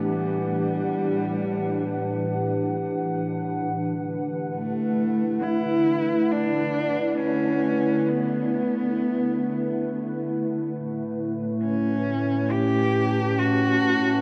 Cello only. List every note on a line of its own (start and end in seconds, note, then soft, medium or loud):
0.08 2.75 G3 medium
4.56 5.44 A3 medium
5.43 6.33 E4 medium
6.32 7.20 D4 loud
7.18 8.10 C#4 medium
8.09 10.28 B3 medium
11.63 12.53 C#4 medium
12.51 13.41 G4 medium
13.39 14.21 F#4 loud